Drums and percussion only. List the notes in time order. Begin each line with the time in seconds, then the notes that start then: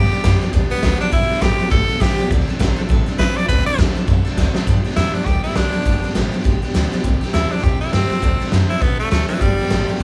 0.03 snare
0.12 snare
0.24 kick, snare, hi-hat pedal
0.42 snare
0.54 kick, snare
0.71 snare
0.83 kick, snare, hi-hat pedal
1.00 snare
1.12 kick, snare
1.22 snare
1.31 snare
1.42 kick, snare, hi-hat pedal
1.60 snare
1.66 snare
1.72 kick, snare
1.89 snare
2.01 kick, snare, hi-hat pedal
2.19 snare
2.31 kick, snare
2.40 snare
2.48 snare
2.60 kick, snare, hi-hat pedal
2.78 snare
2.90 kick, snare
3.07 snare
3.19 kick, snare, hi-hat pedal
3.37 snare
3.49 kick, snare
3.58 snare
3.67 snare
3.79 kick, snare, hi-hat pedal
3.96 snare
4.08 kick, snare
4.26 snare
4.37 kick, snare, hi-hat pedal
4.55 snare
4.67 kick, snare
4.85 snare
4.91 snare
4.97 snare, hi-hat pedal
5.14 snare
5.21 snare
5.26 kick, snare
5.44 snare
5.50 snare
5.56 snare, hi-hat pedal
5.74 snare
5.80 snare
5.86 kick, snare
6.03 snare
6.09 snare
6.15 snare, hi-hat pedal
6.33 snare
6.39 snare
6.45 kick, snare
6.63 snare
6.69 snare
6.75 snare, hi-hat pedal
6.92 snare
6.98 snare
7.04 kick, snare
7.22 snare
7.28 snare
7.34 snare, hi-hat pedal
7.52 snare
7.58 snare
7.64 kick, snare
7.81 snare
7.87 snare
7.93 snare, hi-hat pedal
8.11 snare
8.17 snare
8.23 kick, snare
8.40 snare
8.46 snare
8.52 snare, hi-hat pedal
8.70 snare
8.75 snare
8.82 kick, snare
8.99 snare
9.06 snare
9.12 snare, hi-hat pedal
9.29 snare
9.35 snare
9.41 kick, snare
9.59 snare
9.65 snare
9.71 snare, hi-hat pedal
9.88 snare
9.94 snare